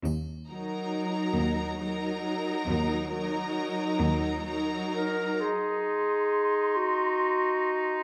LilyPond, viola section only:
\new Staff \with { instrumentName = "Viola section" } { \time 6/8 \key ees \dorian \tempo 4. = 45 r8 <ges ees'>4. <ges ees'>4~ | <ges ees'>8 <ges ees'>4. <ges ees'>4 | r2. | }